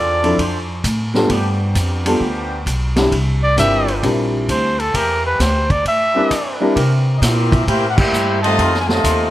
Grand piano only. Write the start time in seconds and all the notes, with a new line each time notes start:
0.23 F3 C4 D4 E4 A4
1.14 G3 B3 D4 F4 A4
2.06 G3 B3 D4 F4 A4
2.96 G3 C4 D4 E4 G4
3.56 G3 C4 D4 E4 A#4
4.03 G3 C4 D4 E4 A#4
6.15 G3 C4 D4 E4 A#4
6.60 G3 C4 D4 E4 A#4